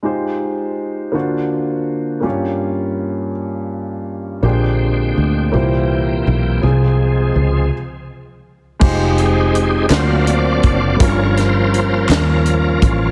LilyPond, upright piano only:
<<
  \new Staff \with { instrumentName = "Upright piano" } { \time 6/8 \key f \minor \tempo 4. = 55 <aes ees' f' g' c''>4. <ais d' eis' fis' c''>4. | <bes des' f' g' des''>2. | <bes d' g' aes' c''>4. <bes c' e' g' c''>4. | <c' f' aes'>4. r4. |
<aes ees' f' g' c''>4. <ais d' eis' fis' c''>4. | <g bes des' f' bes'>2. | }
  \new Staff \with { instrumentName = "Upright piano" } { \clef bass \time 6/8 \key f \minor r4. d4. | g,4. r4. | bes,4. bes,4. | c4. r4. |
r4. d4. | g,4. r4. | }
>>